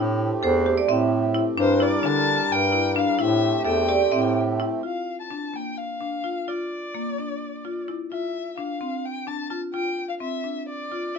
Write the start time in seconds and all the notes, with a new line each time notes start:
Already playing: A2 A3 C4 E4 G4
0.43 E2 A4 C5
0.66 G4
0.78 D5
0.88 A2 C4 E5
1.34 E4
1.57 G2 G3 D4 A#4 C5
1.80 E4 D5
2.03 D3 D4 A5
2.50 G2 G5
2.72 E4
2.96 D4 F5
3.19 A2 A3 C4 E4 G4 E5
3.65 E2 A4 E5 G5
3.89 G4 D5
4.12 A2 C4 E5
4.60 E4
4.83 F4 F5
5.20 A5
5.31 D4
5.54 A#3 G5
5.78 F5
6.00 D4
6.24 F4
6.48 F4 D5
6.95 A#3
7.18 D4
7.65 F4
7.88 E4
8.12 F4 E5
8.58 D4 F5
8.81 C4
9.05 G5
9.27 D4 A5
9.50 F4 A5
9.74 F4 G5
10.09 F5
10.20 C4 E5
10.44 D4
10.69 D5
10.92 F4
11.15 E4